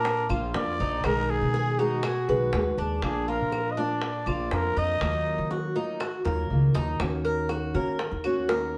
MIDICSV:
0, 0, Header, 1, 7, 480
1, 0, Start_track
1, 0, Key_signature, -6, "minor"
1, 0, Tempo, 496689
1, 1008, Time_signature, 4, 2, 24, 8
1, 8483, End_track
2, 0, Start_track
2, 0, Title_t, "Trumpet"
2, 0, Program_c, 0, 56
2, 0, Note_on_c, 0, 70, 102
2, 293, Note_off_c, 0, 70, 0
2, 543, Note_on_c, 0, 74, 98
2, 1018, Note_on_c, 0, 70, 101
2, 1033, Note_off_c, 0, 74, 0
2, 1260, Note_on_c, 0, 68, 103
2, 1275, Note_off_c, 0, 70, 0
2, 1732, Note_on_c, 0, 66, 85
2, 1747, Note_off_c, 0, 68, 0
2, 2689, Note_off_c, 0, 66, 0
2, 2939, Note_on_c, 0, 68, 84
2, 3174, Note_on_c, 0, 70, 95
2, 3189, Note_off_c, 0, 68, 0
2, 3591, Note_on_c, 0, 75, 71
2, 3606, Note_off_c, 0, 70, 0
2, 3666, Note_on_c, 0, 74, 86
2, 3681, Note_off_c, 0, 75, 0
2, 4375, Note_on_c, 0, 70, 90
2, 4390, Note_off_c, 0, 74, 0
2, 4621, Note_on_c, 0, 75, 103
2, 4636, Note_off_c, 0, 70, 0
2, 5333, Note_off_c, 0, 75, 0
2, 8483, End_track
3, 0, Start_track
3, 0, Title_t, "Cuban tres"
3, 0, Program_c, 1, 25
3, 0, Note_on_c, 1, 62, 76
3, 277, Note_off_c, 1, 62, 0
3, 285, Note_on_c, 1, 65, 65
3, 752, Note_off_c, 1, 65, 0
3, 774, Note_on_c, 1, 63, 77
3, 997, Note_off_c, 1, 63, 0
3, 1008, Note_on_c, 1, 63, 61
3, 1473, Note_off_c, 1, 63, 0
3, 1487, Note_on_c, 1, 68, 62
3, 1720, Note_off_c, 1, 68, 0
3, 1729, Note_on_c, 1, 63, 81
3, 1961, Note_off_c, 1, 63, 0
3, 1969, Note_on_c, 1, 68, 64
3, 2200, Note_off_c, 1, 68, 0
3, 2212, Note_on_c, 1, 71, 70
3, 2674, Note_off_c, 1, 71, 0
3, 2689, Note_on_c, 1, 62, 75
3, 3153, Note_off_c, 1, 62, 0
3, 3170, Note_on_c, 1, 65, 68
3, 3633, Note_off_c, 1, 65, 0
3, 3645, Note_on_c, 1, 62, 80
3, 4111, Note_off_c, 1, 62, 0
3, 4128, Note_on_c, 1, 65, 64
3, 4592, Note_off_c, 1, 65, 0
3, 4607, Note_on_c, 1, 63, 75
3, 4835, Note_off_c, 1, 63, 0
3, 4847, Note_on_c, 1, 63, 66
3, 5311, Note_off_c, 1, 63, 0
3, 5324, Note_on_c, 1, 66, 65
3, 5557, Note_off_c, 1, 66, 0
3, 5563, Note_on_c, 1, 63, 73
3, 5796, Note_off_c, 1, 63, 0
3, 5798, Note_on_c, 1, 66, 59
3, 6032, Note_off_c, 1, 66, 0
3, 6036, Note_on_c, 1, 70, 64
3, 6506, Note_off_c, 1, 70, 0
3, 6518, Note_on_c, 1, 63, 84
3, 6754, Note_off_c, 1, 63, 0
3, 7003, Note_on_c, 1, 70, 73
3, 7237, Note_off_c, 1, 70, 0
3, 7240, Note_on_c, 1, 66, 62
3, 7475, Note_off_c, 1, 66, 0
3, 7485, Note_on_c, 1, 70, 71
3, 7951, Note_off_c, 1, 70, 0
3, 7964, Note_on_c, 1, 66, 68
3, 8198, Note_off_c, 1, 66, 0
3, 8203, Note_on_c, 1, 70, 68
3, 8483, Note_off_c, 1, 70, 0
3, 8483, End_track
4, 0, Start_track
4, 0, Title_t, "Nylon-string guitar"
4, 0, Program_c, 2, 24
4, 289, Note_on_c, 2, 65, 66
4, 299, Note_on_c, 2, 62, 58
4, 306, Note_on_c, 2, 58, 56
4, 518, Note_off_c, 2, 58, 0
4, 519, Note_off_c, 2, 65, 0
4, 523, Note_on_c, 2, 53, 50
4, 524, Note_off_c, 2, 62, 0
4, 530, Note_on_c, 2, 58, 52
4, 536, Note_on_c, 2, 62, 55
4, 542, Note_on_c, 2, 65, 52
4, 996, Note_off_c, 2, 53, 0
4, 999, Note_off_c, 2, 58, 0
4, 1001, Note_on_c, 2, 47, 70
4, 1002, Note_off_c, 2, 62, 0
4, 1005, Note_off_c, 2, 65, 0
4, 1007, Note_on_c, 2, 51, 80
4, 1012, Note_on_c, 2, 56, 72
4, 1017, Note_on_c, 2, 59, 81
4, 1020, Note_on_c, 2, 68, 84
4, 1713, Note_off_c, 2, 68, 0
4, 1714, Note_off_c, 2, 47, 0
4, 1717, Note_off_c, 2, 51, 0
4, 1720, Note_off_c, 2, 56, 0
4, 1720, Note_off_c, 2, 59, 0
4, 1725, Note_on_c, 2, 68, 73
4, 1731, Note_on_c, 2, 59, 60
4, 1738, Note_on_c, 2, 56, 61
4, 1741, Note_on_c, 2, 51, 56
4, 1956, Note_off_c, 2, 68, 0
4, 1957, Note_off_c, 2, 51, 0
4, 1959, Note_off_c, 2, 56, 0
4, 1959, Note_off_c, 2, 59, 0
4, 2207, Note_on_c, 2, 68, 74
4, 2215, Note_on_c, 2, 59, 55
4, 2222, Note_on_c, 2, 56, 53
4, 2227, Note_on_c, 2, 51, 51
4, 2437, Note_off_c, 2, 68, 0
4, 2439, Note_off_c, 2, 51, 0
4, 2441, Note_off_c, 2, 59, 0
4, 2444, Note_off_c, 2, 56, 0
4, 2451, Note_on_c, 2, 51, 46
4, 2457, Note_on_c, 2, 56, 52
4, 2464, Note_on_c, 2, 59, 55
4, 2468, Note_on_c, 2, 68, 55
4, 2919, Note_off_c, 2, 51, 0
4, 2922, Note_off_c, 2, 56, 0
4, 2924, Note_on_c, 2, 53, 76
4, 2925, Note_off_c, 2, 59, 0
4, 2927, Note_off_c, 2, 68, 0
4, 2932, Note_on_c, 2, 58, 82
4, 2938, Note_on_c, 2, 62, 81
4, 2941, Note_on_c, 2, 65, 78
4, 3642, Note_off_c, 2, 62, 0
4, 3642, Note_off_c, 2, 65, 0
4, 3646, Note_on_c, 2, 65, 68
4, 3654, Note_on_c, 2, 62, 65
4, 3659, Note_off_c, 2, 58, 0
4, 3663, Note_on_c, 2, 58, 61
4, 3876, Note_off_c, 2, 65, 0
4, 3879, Note_off_c, 2, 58, 0
4, 3880, Note_off_c, 2, 62, 0
4, 3883, Note_off_c, 2, 53, 0
4, 4122, Note_on_c, 2, 65, 66
4, 4136, Note_on_c, 2, 62, 66
4, 4143, Note_on_c, 2, 58, 61
4, 4354, Note_off_c, 2, 65, 0
4, 4361, Note_off_c, 2, 62, 0
4, 4364, Note_off_c, 2, 58, 0
4, 4366, Note_on_c, 2, 53, 43
4, 4376, Note_on_c, 2, 58, 47
4, 4379, Note_on_c, 2, 62, 52
4, 4386, Note_on_c, 2, 65, 53
4, 4836, Note_off_c, 2, 53, 0
4, 4839, Note_on_c, 2, 51, 69
4, 4841, Note_off_c, 2, 58, 0
4, 4842, Note_off_c, 2, 62, 0
4, 4846, Note_off_c, 2, 65, 0
4, 4847, Note_on_c, 2, 54, 63
4, 4854, Note_on_c, 2, 58, 81
4, 4859, Note_on_c, 2, 65, 87
4, 5549, Note_off_c, 2, 65, 0
4, 5552, Note_off_c, 2, 51, 0
4, 5556, Note_off_c, 2, 54, 0
4, 5560, Note_off_c, 2, 58, 0
4, 5561, Note_on_c, 2, 65, 71
4, 5570, Note_on_c, 2, 58, 59
4, 5577, Note_on_c, 2, 54, 54
4, 5793, Note_off_c, 2, 65, 0
4, 5794, Note_off_c, 2, 54, 0
4, 5798, Note_off_c, 2, 58, 0
4, 6043, Note_on_c, 2, 65, 63
4, 6054, Note_on_c, 2, 58, 60
4, 6063, Note_on_c, 2, 54, 58
4, 6275, Note_off_c, 2, 65, 0
4, 6280, Note_off_c, 2, 58, 0
4, 6284, Note_off_c, 2, 54, 0
4, 6286, Note_on_c, 2, 51, 47
4, 6295, Note_on_c, 2, 54, 46
4, 6302, Note_on_c, 2, 58, 49
4, 6307, Note_on_c, 2, 65, 48
4, 6750, Note_off_c, 2, 51, 0
4, 6758, Note_off_c, 2, 54, 0
4, 6759, Note_off_c, 2, 58, 0
4, 6762, Note_on_c, 2, 51, 73
4, 6767, Note_off_c, 2, 65, 0
4, 6770, Note_on_c, 2, 58, 78
4, 6777, Note_on_c, 2, 61, 82
4, 6780, Note_on_c, 2, 66, 77
4, 7474, Note_off_c, 2, 51, 0
4, 7478, Note_off_c, 2, 58, 0
4, 7478, Note_off_c, 2, 66, 0
4, 7479, Note_off_c, 2, 61, 0
4, 7482, Note_on_c, 2, 66, 70
4, 7490, Note_on_c, 2, 61, 56
4, 7502, Note_on_c, 2, 58, 56
4, 7714, Note_off_c, 2, 66, 0
4, 7717, Note_off_c, 2, 58, 0
4, 7718, Note_off_c, 2, 61, 0
4, 7965, Note_on_c, 2, 66, 69
4, 7977, Note_on_c, 2, 61, 57
4, 7986, Note_on_c, 2, 58, 52
4, 8196, Note_off_c, 2, 66, 0
4, 8202, Note_off_c, 2, 58, 0
4, 8202, Note_off_c, 2, 61, 0
4, 8206, Note_on_c, 2, 51, 52
4, 8214, Note_on_c, 2, 58, 53
4, 8217, Note_on_c, 2, 61, 54
4, 8224, Note_on_c, 2, 66, 54
4, 8483, Note_off_c, 2, 51, 0
4, 8483, Note_off_c, 2, 58, 0
4, 8483, Note_off_c, 2, 61, 0
4, 8483, Note_off_c, 2, 66, 0
4, 8483, End_track
5, 0, Start_track
5, 0, Title_t, "Upright bass"
5, 0, Program_c, 3, 32
5, 0, Note_on_c, 3, 46, 89
5, 249, Note_off_c, 3, 46, 0
5, 283, Note_on_c, 3, 34, 96
5, 513, Note_off_c, 3, 34, 0
5, 526, Note_on_c, 3, 41, 75
5, 768, Note_on_c, 3, 34, 85
5, 783, Note_off_c, 3, 41, 0
5, 996, Note_off_c, 3, 34, 0
5, 1005, Note_on_c, 3, 35, 86
5, 1348, Note_off_c, 3, 35, 0
5, 1367, Note_on_c, 3, 47, 87
5, 2168, Note_off_c, 3, 47, 0
5, 2208, Note_on_c, 3, 35, 92
5, 2435, Note_off_c, 3, 35, 0
5, 2442, Note_on_c, 3, 39, 72
5, 2672, Note_off_c, 3, 39, 0
5, 2683, Note_on_c, 3, 39, 90
5, 2912, Note_off_c, 3, 39, 0
5, 2917, Note_on_c, 3, 34, 91
5, 3263, Note_off_c, 3, 34, 0
5, 3282, Note_on_c, 3, 46, 85
5, 4085, Note_off_c, 3, 46, 0
5, 4117, Note_on_c, 3, 34, 102
5, 4349, Note_off_c, 3, 34, 0
5, 4360, Note_on_c, 3, 41, 82
5, 4590, Note_off_c, 3, 41, 0
5, 4604, Note_on_c, 3, 41, 84
5, 4832, Note_off_c, 3, 41, 0
5, 4841, Note_on_c, 3, 39, 83
5, 5185, Note_off_c, 3, 39, 0
5, 5201, Note_on_c, 3, 51, 90
5, 6004, Note_off_c, 3, 51, 0
5, 6042, Note_on_c, 3, 39, 93
5, 6271, Note_off_c, 3, 39, 0
5, 6282, Note_on_c, 3, 37, 69
5, 6499, Note_off_c, 3, 37, 0
5, 6522, Note_on_c, 3, 39, 86
5, 6739, Note_off_c, 3, 39, 0
5, 6761, Note_on_c, 3, 39, 92
5, 7447, Note_off_c, 3, 39, 0
5, 7481, Note_on_c, 3, 51, 86
5, 7825, Note_off_c, 3, 51, 0
5, 7842, Note_on_c, 3, 39, 83
5, 8483, Note_off_c, 3, 39, 0
5, 8483, End_track
6, 0, Start_track
6, 0, Title_t, "Muted nylon-string guitar strokes"
6, 48, Note_on_c, 9, 29, 54
6, 144, Note_off_c, 9, 29, 0
6, 1967, Note_on_c, 9, 29, 47
6, 2064, Note_off_c, 9, 29, 0
6, 3886, Note_on_c, 9, 29, 54
6, 3983, Note_off_c, 9, 29, 0
6, 5804, Note_on_c, 9, 29, 48
6, 5900, Note_off_c, 9, 29, 0
6, 7728, Note_on_c, 9, 29, 50
6, 7825, Note_off_c, 9, 29, 0
6, 8483, End_track
7, 0, Start_track
7, 0, Title_t, "Drums"
7, 48, Note_on_c, 9, 60, 66
7, 145, Note_off_c, 9, 60, 0
7, 291, Note_on_c, 9, 75, 71
7, 388, Note_off_c, 9, 75, 0
7, 526, Note_on_c, 9, 60, 72
7, 526, Note_on_c, 9, 61, 87
7, 622, Note_off_c, 9, 60, 0
7, 622, Note_off_c, 9, 61, 0
7, 1003, Note_on_c, 9, 60, 66
7, 1006, Note_on_c, 9, 75, 64
7, 1099, Note_off_c, 9, 60, 0
7, 1103, Note_off_c, 9, 75, 0
7, 1247, Note_on_c, 9, 60, 33
7, 1343, Note_off_c, 9, 60, 0
7, 1488, Note_on_c, 9, 60, 54
7, 1585, Note_off_c, 9, 60, 0
7, 1725, Note_on_c, 9, 60, 35
7, 1822, Note_off_c, 9, 60, 0
7, 1962, Note_on_c, 9, 60, 68
7, 1969, Note_on_c, 9, 75, 66
7, 2058, Note_off_c, 9, 60, 0
7, 2065, Note_off_c, 9, 75, 0
7, 2443, Note_on_c, 9, 60, 72
7, 2443, Note_on_c, 9, 61, 88
7, 2540, Note_off_c, 9, 60, 0
7, 2540, Note_off_c, 9, 61, 0
7, 2682, Note_on_c, 9, 60, 33
7, 2778, Note_off_c, 9, 60, 0
7, 2922, Note_on_c, 9, 60, 72
7, 2933, Note_on_c, 9, 75, 67
7, 3019, Note_off_c, 9, 60, 0
7, 3029, Note_off_c, 9, 75, 0
7, 3403, Note_on_c, 9, 60, 59
7, 3408, Note_on_c, 9, 75, 59
7, 3499, Note_off_c, 9, 60, 0
7, 3505, Note_off_c, 9, 75, 0
7, 3880, Note_on_c, 9, 60, 64
7, 3977, Note_off_c, 9, 60, 0
7, 4126, Note_on_c, 9, 75, 66
7, 4223, Note_off_c, 9, 75, 0
7, 4361, Note_on_c, 9, 60, 70
7, 4361, Note_on_c, 9, 61, 80
7, 4458, Note_off_c, 9, 60, 0
7, 4458, Note_off_c, 9, 61, 0
7, 4843, Note_on_c, 9, 60, 69
7, 4847, Note_on_c, 9, 75, 58
7, 4940, Note_off_c, 9, 60, 0
7, 4944, Note_off_c, 9, 75, 0
7, 5087, Note_on_c, 9, 60, 36
7, 5184, Note_off_c, 9, 60, 0
7, 5321, Note_on_c, 9, 60, 54
7, 5418, Note_off_c, 9, 60, 0
7, 5564, Note_on_c, 9, 60, 33
7, 5660, Note_off_c, 9, 60, 0
7, 5801, Note_on_c, 9, 75, 66
7, 5804, Note_on_c, 9, 60, 62
7, 5898, Note_off_c, 9, 75, 0
7, 5901, Note_off_c, 9, 60, 0
7, 6043, Note_on_c, 9, 60, 81
7, 6139, Note_off_c, 9, 60, 0
7, 6523, Note_on_c, 9, 61, 79
7, 6620, Note_off_c, 9, 61, 0
7, 6763, Note_on_c, 9, 60, 70
7, 6765, Note_on_c, 9, 75, 57
7, 6860, Note_off_c, 9, 60, 0
7, 6861, Note_off_c, 9, 75, 0
7, 7240, Note_on_c, 9, 60, 55
7, 7242, Note_on_c, 9, 75, 59
7, 7337, Note_off_c, 9, 60, 0
7, 7339, Note_off_c, 9, 75, 0
7, 7724, Note_on_c, 9, 60, 66
7, 7820, Note_off_c, 9, 60, 0
7, 7964, Note_on_c, 9, 75, 74
7, 8060, Note_off_c, 9, 75, 0
7, 8205, Note_on_c, 9, 60, 76
7, 8205, Note_on_c, 9, 61, 89
7, 8302, Note_off_c, 9, 60, 0
7, 8302, Note_off_c, 9, 61, 0
7, 8483, End_track
0, 0, End_of_file